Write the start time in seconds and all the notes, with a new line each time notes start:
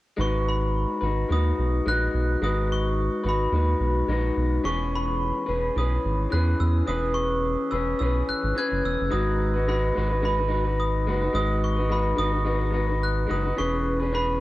0.17 G#1 G#3 D#4 F#4 B4
0.21 C#6
0.49 B5
1.01 G#1 F#4 B4
1.06 D#4
1.29 D#2 G#3 D#4 F#4 D#6
1.33 B4
1.59 B1
1.86 A#1 G#3 D#4 F#4 B4 F#6
2.14 B1
2.42 G#1 G#3 D#4 F#4 B4 D#6
2.72 C#6
3.24 G#1 D#4 F#4 B4
3.29 B5
3.52 D#2 G#3 D#4 F#4 B4
3.80 B1
4.08 A#1 G#3 D#4 F#4 B4
4.37 B1
4.63 E1 E3 C#4 G#4 B4 C#6
4.95 B5
5.46 E1 G#4 B4
5.50 C#4
5.76 B1 E3 C#4 G#4 D#6
5.80 B4
6.05 G#1
6.30 E2 E3 C#4 G#4 F#6
6.34 B4
6.60 E2 E6
6.87 E1 E3 C#4 G#4 B4 D#6
7.14 C#6
7.71 E1 G#4 B4 E6
7.75 C#4
7.99 B1 E3 C#4 G#4 E6
8.03 B4
8.28 G#1 F#6
8.43 G#1
8.55 E3 C#4 G#4 B4 F#6 G#6
8.72 F#1
8.85 E1 E6
9.01 F#1
9.10 G#1 G#3 D#4 F#4 B4 D#6
9.54 D#4 F#4 B4
9.67 G#3 D#4 F#4 B4 B5
9.94 G#1 G#3 D#4 F#4 B4
10.10 D#4 F#4 B4
10.22 G#3 D#4 F#4 B4 B5
10.37 D#4 F#4 B4
10.48 G#3 D#4 F#4 B4
10.64 F#4 B4
10.69 D#4
10.80 D#6
11.06 F#1 G#3 D#4 F#4 B4
11.21 F#4 B4
11.25 D#4
11.33 G#1 G#3 D#4 F#4 B4 D#6
11.64 C#6
11.77 D#4 F#4 B4
11.90 G#3 D#4 F#4 B4 B5
12.16 G#1 G#3 D#4 F#4 B4 D#6
12.32 D#4 F#4 B4
12.44 G#3 D#4 F#4 B4
12.59 D#4 F#4 B4
12.71 G#3 D#4 F#4 B4
12.87 F#4 B4
12.91 D#4
13.03 F#6
13.27 F#1 G#3 D#4 F#4 B4
13.31 D#6
13.43 D#4 F#4 B4
13.56 E1 E3 C#4 G#4 B4 C#6
14.00 C#4 G#4 B4
14.11 E3 C#4 G#4 B4 B5